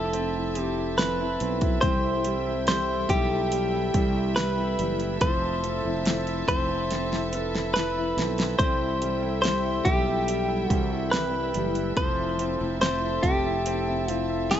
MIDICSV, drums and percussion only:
0, 0, Header, 1, 2, 480
1, 0, Start_track
1, 0, Tempo, 845070
1, 1039, Time_signature, 4, 2, 24, 8
1, 8292, End_track
2, 0, Start_track
2, 0, Title_t, "Drums"
2, 76, Note_on_c, 9, 42, 99
2, 133, Note_off_c, 9, 42, 0
2, 315, Note_on_c, 9, 42, 79
2, 372, Note_off_c, 9, 42, 0
2, 559, Note_on_c, 9, 42, 87
2, 564, Note_on_c, 9, 38, 112
2, 616, Note_off_c, 9, 42, 0
2, 621, Note_off_c, 9, 38, 0
2, 797, Note_on_c, 9, 42, 71
2, 854, Note_off_c, 9, 42, 0
2, 916, Note_on_c, 9, 42, 57
2, 918, Note_on_c, 9, 36, 88
2, 973, Note_off_c, 9, 42, 0
2, 975, Note_off_c, 9, 36, 0
2, 1034, Note_on_c, 9, 42, 85
2, 1037, Note_on_c, 9, 36, 111
2, 1091, Note_off_c, 9, 42, 0
2, 1094, Note_off_c, 9, 36, 0
2, 1275, Note_on_c, 9, 42, 72
2, 1332, Note_off_c, 9, 42, 0
2, 1516, Note_on_c, 9, 42, 81
2, 1526, Note_on_c, 9, 38, 123
2, 1573, Note_off_c, 9, 42, 0
2, 1582, Note_off_c, 9, 38, 0
2, 1756, Note_on_c, 9, 36, 81
2, 1758, Note_on_c, 9, 42, 75
2, 1813, Note_off_c, 9, 36, 0
2, 1815, Note_off_c, 9, 42, 0
2, 1998, Note_on_c, 9, 42, 96
2, 2055, Note_off_c, 9, 42, 0
2, 2239, Note_on_c, 9, 42, 76
2, 2240, Note_on_c, 9, 36, 77
2, 2296, Note_off_c, 9, 42, 0
2, 2297, Note_off_c, 9, 36, 0
2, 2479, Note_on_c, 9, 42, 88
2, 2484, Note_on_c, 9, 38, 111
2, 2536, Note_off_c, 9, 42, 0
2, 2541, Note_off_c, 9, 38, 0
2, 2720, Note_on_c, 9, 42, 73
2, 2777, Note_off_c, 9, 42, 0
2, 2838, Note_on_c, 9, 42, 56
2, 2895, Note_off_c, 9, 42, 0
2, 2959, Note_on_c, 9, 42, 98
2, 2961, Note_on_c, 9, 36, 111
2, 3016, Note_off_c, 9, 42, 0
2, 3017, Note_off_c, 9, 36, 0
2, 3202, Note_on_c, 9, 42, 74
2, 3259, Note_off_c, 9, 42, 0
2, 3439, Note_on_c, 9, 42, 72
2, 3449, Note_on_c, 9, 38, 117
2, 3496, Note_off_c, 9, 42, 0
2, 3505, Note_off_c, 9, 38, 0
2, 3561, Note_on_c, 9, 42, 48
2, 3618, Note_off_c, 9, 42, 0
2, 3679, Note_on_c, 9, 36, 88
2, 3684, Note_on_c, 9, 42, 72
2, 3736, Note_off_c, 9, 36, 0
2, 3740, Note_off_c, 9, 42, 0
2, 3923, Note_on_c, 9, 42, 96
2, 3931, Note_on_c, 9, 38, 58
2, 3979, Note_off_c, 9, 42, 0
2, 3987, Note_off_c, 9, 38, 0
2, 4049, Note_on_c, 9, 38, 56
2, 4106, Note_off_c, 9, 38, 0
2, 4162, Note_on_c, 9, 42, 76
2, 4219, Note_off_c, 9, 42, 0
2, 4291, Note_on_c, 9, 38, 67
2, 4348, Note_off_c, 9, 38, 0
2, 4406, Note_on_c, 9, 42, 90
2, 4411, Note_on_c, 9, 38, 92
2, 4463, Note_off_c, 9, 42, 0
2, 4468, Note_off_c, 9, 38, 0
2, 4646, Note_on_c, 9, 42, 68
2, 4652, Note_on_c, 9, 38, 82
2, 4702, Note_off_c, 9, 42, 0
2, 4709, Note_off_c, 9, 38, 0
2, 4761, Note_on_c, 9, 42, 52
2, 4770, Note_on_c, 9, 38, 83
2, 4817, Note_off_c, 9, 42, 0
2, 4827, Note_off_c, 9, 38, 0
2, 4881, Note_on_c, 9, 36, 115
2, 4882, Note_on_c, 9, 42, 97
2, 4938, Note_off_c, 9, 36, 0
2, 4939, Note_off_c, 9, 42, 0
2, 5122, Note_on_c, 9, 42, 77
2, 5179, Note_off_c, 9, 42, 0
2, 5360, Note_on_c, 9, 42, 73
2, 5369, Note_on_c, 9, 38, 127
2, 5416, Note_off_c, 9, 42, 0
2, 5426, Note_off_c, 9, 38, 0
2, 5596, Note_on_c, 9, 36, 93
2, 5597, Note_on_c, 9, 42, 71
2, 5653, Note_off_c, 9, 36, 0
2, 5654, Note_off_c, 9, 42, 0
2, 5840, Note_on_c, 9, 42, 95
2, 5897, Note_off_c, 9, 42, 0
2, 6079, Note_on_c, 9, 36, 76
2, 6080, Note_on_c, 9, 42, 84
2, 6136, Note_off_c, 9, 36, 0
2, 6137, Note_off_c, 9, 42, 0
2, 6321, Note_on_c, 9, 42, 90
2, 6326, Note_on_c, 9, 38, 102
2, 6378, Note_off_c, 9, 42, 0
2, 6383, Note_off_c, 9, 38, 0
2, 6557, Note_on_c, 9, 42, 69
2, 6614, Note_off_c, 9, 42, 0
2, 6675, Note_on_c, 9, 42, 52
2, 6732, Note_off_c, 9, 42, 0
2, 6797, Note_on_c, 9, 36, 112
2, 6797, Note_on_c, 9, 42, 82
2, 6854, Note_off_c, 9, 36, 0
2, 6854, Note_off_c, 9, 42, 0
2, 7039, Note_on_c, 9, 42, 69
2, 7095, Note_off_c, 9, 42, 0
2, 7277, Note_on_c, 9, 42, 77
2, 7287, Note_on_c, 9, 38, 108
2, 7334, Note_off_c, 9, 42, 0
2, 7344, Note_off_c, 9, 38, 0
2, 7515, Note_on_c, 9, 36, 89
2, 7518, Note_on_c, 9, 42, 68
2, 7572, Note_off_c, 9, 36, 0
2, 7575, Note_off_c, 9, 42, 0
2, 7758, Note_on_c, 9, 42, 90
2, 7815, Note_off_c, 9, 42, 0
2, 8000, Note_on_c, 9, 42, 78
2, 8057, Note_off_c, 9, 42, 0
2, 8240, Note_on_c, 9, 42, 90
2, 8245, Note_on_c, 9, 38, 120
2, 8292, Note_off_c, 9, 38, 0
2, 8292, Note_off_c, 9, 42, 0
2, 8292, End_track
0, 0, End_of_file